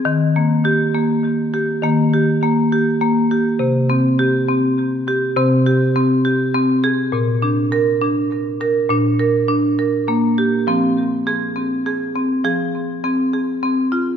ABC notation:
X:1
M:3/4
L:1/8
Q:1/4=102
K:Fdor
V:1 name="Marimba"
z B, G B,2 G | B, G B, G B, G | z C G C2 G | C G C G C A |
z D B D2 B | D B D B B, G | C2 A C A C | A2 C A C F |]
V:2 name="Marimba" clef=bass
E,6 | E,6 | C,6 | C,6 |
B,,6 | B,,6 | F,6 | F,6 |]